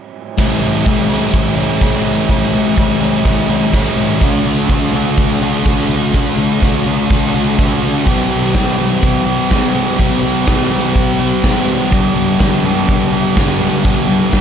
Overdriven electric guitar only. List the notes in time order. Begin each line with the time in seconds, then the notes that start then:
0.39 A2 E3 G3 C#4 E4
0.86 E3 G3 C#4 E4
1.10 G3 C#4 E4
1.57 G3 C#4 E4
1.80 A2 E3 G3 C#4 E4
2.29 A2 E3 G3 C#4 E4
2.77 E3 G3 C#4 E4
3.02 G3 C#4 E4
3.50 G3 C#4 E4
3.74 A2 E3 G3 C#4 E4
4.22 D3 A3 D4 F#4
4.70 D3 A3 D4 F#4
4.94 A3 D4 F#4
5.43 A3 D4 F#4
5.66 D3 A3 D4 F#4
6.14 D3 A3 D4 F#4
6.63 D3 A3 D4 F#4
6.87 A3 D4 F#4
7.34 A3 D4 F#4
7.58 D3 A3 D4 F#4
8.06 C3 E3 G3 C4 G4
8.54 E3 G3 C4 G4
8.78 G3 C4 G4
9.26 G3 C4 G4
9.50 C3 E3 G3 C4 G4
9.98 C3 E3 G3 C4 G4
10.46 E3 G3 C4 G4
10.71 G3 C4 G4
11.20 G3 C4 G4
11.43 C3 E3 G3 C4 G4
11.91 G2 D3 G3 B3 D4 G4
12.40 G3 B3 D4 G4
12.64 G3 B3 D4 G4
13.13 G3 B3 D4 G4
13.37 G2 D3 G3 B3 D4 G4
13.84 G2 D3 G3 B3 D4 G4
14.33 G3 B3 D4 G4